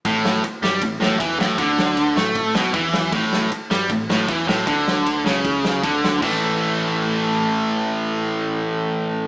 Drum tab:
CC |--------|--------|--------|--------|
RD |x-x-x-x-|x-x-x-x-|x-x-x-x-|x-x-x-x-|
SD |-o-o-o-o|-o-o-o-o|-o-o-o-o|-o-o-o-o|
BD |o---o-o-|o---o-o-|o---o-o-|o---o-o-|

CC |x-------|--------|
RD |--------|--------|
SD |--------|--------|
BD |o-------|--------|